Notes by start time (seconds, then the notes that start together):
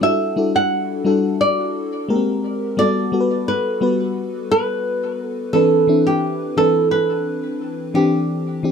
0.01 G3 D4 E4 F#4 A4 E5
0.36 G3 D4 E4 F#4 A4
0.56 F#5
1.05 G3 D4 E4 F#4 A4
1.41 D5
2.08 G#3 A#3 G4 A#4
2.16 C4
2.77 G3 B3 F#4 A4 D5
3.12 G3 B3 F#4 A4
3.20 B4
3.48 B4
3.81 G3 B3 F#4 B4
4.51 B4
5.25 A4
5.53 E3 C4 D4 A4 B4
5.87 E3 C4 D4 E4
6.07 G4
6.57 E3 C4 D4 A4 B4
6.91 B4
7.94 E3 C4 D4 G4
8.63 E3 C4 D4 G4